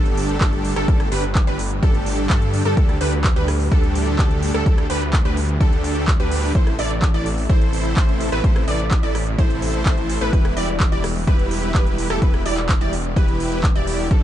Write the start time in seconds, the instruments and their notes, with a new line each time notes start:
Already playing: detuned saw bass G1, analog synth pad A2 D3 G3 D4 G4, supersaw synth D4 G4 A4, synth pluck A4, sub drop
0.06 closed hi-hat
0.17 open hi-hat
0.29 closed hi-hat
0.41 detuned saw bass G1, supersaw synth D4 G4 A4, synth pluck A4, kick, clap, closed hi-hat
0.53 closed hi-hat
0.65 open hi-hat
0.76 detuned saw bass G1, supersaw synth D4 G4 A4, synth pluck A4, cross-stick, closed hi-hat
0.88 detuned saw bass G1, supersaw synth D4 G4 A4, synth pluck A4, kick, closed hi-hat
1.00 cross-stick, closed hi-hat
1.12 detuned saw bass G1, supersaw synth D4 G4 B4, synth pluck B4, open hi-hat
1.35 kick, clap, closed hi-hat
1.47 detuned saw bass G1, supersaw synth D4 G4 B4, synth pluck B4, closed hi-hat
1.59 open hi-hat
1.71 closed hi-hat
1.83 detuned saw bass G1, supersaw synth D4 G4 A4, synth pluck A4, kick, closed hi-hat
1.94 closed hi-hat
2.06 open hi-hat
2.18 closed hi-hat
2.30 detuned saw bass G2, supersaw synth D4 G4 A4, synth pluck A4, kick, clap, closed hi-hat
2.42 closed hi-hat
2.54 open hi-hat
2.65 detuned saw bass G2, supersaw synth D4 G4 A4, synth pluck A4
2.77 detuned saw bass D2, supersaw synth D4 G4 A4, synth pluck A4, kick, closed hi-hat
2.89 cross-stick, closed hi-hat
3.01 detuned saw bass D2, supersaw synth D4 G4 B4, synth pluck B4, open hi-hat
3.13 closed hi-hat
3.24 kick, clap, closed hi-hat
3.36 detuned saw bass D2, supersaw synth D4 G4 B4, synth pluck B4, closed hi-hat
3.48 cross-stick, open hi-hat
3.60 open hi-hat
3.72 detuned saw bass D2, supersaw synth D4 G4 A4, synth pluck A4, kick, closed hi-hat
3.83 closed hi-hat
3.95 open hi-hat
4.07 closed hi-hat
4.19 detuned saw bass D2, supersaw synth D4 G4 A4, synth pluck A4, kick, clap, closed hi-hat
4.31 closed hi-hat
4.43 open hi-hat
4.54 detuned saw bass D2, supersaw synth D4 G4 A4, synth pluck A4, cross-stick
4.66 detuned saw bass D2, supersaw synth D4 G4 A4, synth pluck A4, kick, closed hi-hat
4.78 cross-stick, closed hi-hat
4.90 detuned saw bass D2, supersaw synth D4 G4 B4, synth pluck B4, open hi-hat
5.02 closed hi-hat
5.13 kick, clap, closed hi-hat
5.25 detuned saw bass D2, supersaw synth D4 G4 B4, synth pluck B4, closed hi-hat
5.37 open hi-hat
5.49 closed hi-hat
5.61 detuned saw bass D2, supersaw synth D4 G4 A4, synth pluck A4, kick, closed hi-hat
5.72 closed hi-hat
5.84 open hi-hat
5.96 closed hi-hat
6.08 kick, clap, closed hi-hat
6.20 detuned saw bass D2, supersaw synth D4 G4 B4, synth pluck B4, closed hi-hat
6.31 open hi-hat
6.43 open hi-hat
6.55 detuned saw bass A1, analog synth pad C3 E3 A3 E4 A4, supersaw synth E4 A4 C5, synth pluck C5, kick
6.67 cross-stick, closed hi-hat
6.79 detuned saw bass A1, supersaw synth E4 A4 D5, synth pluck D5, open hi-hat
7.02 kick, clap, closed hi-hat
7.14 detuned saw bass A1, supersaw synth E4 A4 D5, synth pluck D5, closed hi-hat
7.26 open hi-hat
7.38 open hi-hat
7.49 detuned saw bass A1, supersaw synth E4 A4 C5, synth pluck C5, kick, closed hi-hat
7.61 closed hi-hat
7.73 open hi-hat
7.97 detuned saw bass A1, supersaw synth E4 A4 C5, synth pluck C5, kick, clap, closed hi-hat
8.09 closed hi-hat
8.20 open hi-hat
8.32 detuned saw bass A1, supersaw synth E4 A4 B4, synth pluck B4, cross-stick, closed hi-hat
8.44 detuned saw bass A1, supersaw synth E4 A4 C5, synth pluck C5, analog synth pad B5, kick, closed hi-hat
8.56 cross-stick, closed hi-hat
8.68 detuned saw bass A1, supersaw synth E4 A4 D5, synth pluck D5, open hi-hat
8.80 closed hi-hat
8.91 kick, clap, closed hi-hat
9.03 detuned saw bass A1, supersaw synth E4 A4 D5, synth pluck D5, closed hi-hat
9.15 cross-stick, open hi-hat
9.38 detuned saw bass A1, supersaw synth E4 A4 C5, synth pluck C5, kick, closed hi-hat
9.50 closed hi-hat
9.62 open hi-hat
9.74 closed hi-hat
9.86 detuned saw bass A1, supersaw synth E4 A4 C5, synth pluck C5, kick, clap, closed hi-hat
9.98 closed hi-hat
10.09 open hi-hat
10.21 detuned saw bass A1, supersaw synth E4 A4 B4, synth pluck B4, closed hi-hat
10.33 detuned saw bass E1, analog synth pad B2 G3 G4, supersaw synth E4 G4 B4, synth pluck B4, kick, closed hi-hat
10.45 cross-stick, closed hi-hat
10.57 detuned saw bass E1, supersaw synth E4 G4 D5, synth pluck D5, open hi-hat
10.80 kick, clap, closed hi-hat
10.92 detuned saw bass E1, supersaw synth E4 G4 D5, synth pluck D5, closed hi-hat
11.04 cross-stick, open hi-hat
11.16 open hi-hat
11.27 detuned saw bass E1, supersaw synth E4 G4 B4, synth pluck B4, kick, closed hi-hat
11.39 closed hi-hat
11.51 open hi-hat
11.63 closed hi-hat
11.74 detuned saw bass E1, supersaw synth E4 G4 B4, synth pluck B4, kick, clap, closed hi-hat
11.87 closed hi-hat
11.98 open hi-hat
12.10 detuned saw bass E1, supersaw synth E4 G4 A4, synth pluck A4, cross-stick
12.22 detuned saw bass E1, supersaw synth E4 G4 B4, synth pluck B4, kick, closed hi-hat
12.34 cross-stick, closed hi-hat
12.46 detuned saw bass E1, supersaw synth E4 G4 D5, synth pluck D5, open hi-hat
12.57 clap
12.69 kick, clap, closed hi-hat
12.81 detuned saw bass E1, supersaw synth E4 G4 D5, synth pluck D5, closed hi-hat
12.93 open hi-hat
13.05 closed hi-hat
13.16 detuned saw bass E1, supersaw synth E4 G4 B4, synth pluck B4, kick, closed hi-hat
13.28 closed hi-hat
13.40 open hi-hat
13.52 closed hi-hat
13.63 kick, clap, closed hi-hat
13.75 detuned saw bass E1, supersaw synth E4 G4 D5, synth pluck D5, closed hi-hat
13.87 open hi-hat
13.99 open hi-hat
14.11 detuned saw bass G1, analog synth pad A2 D3 D4, supersaw synth D4 G4 A4, synth pluck A4, kick, closed hi-hat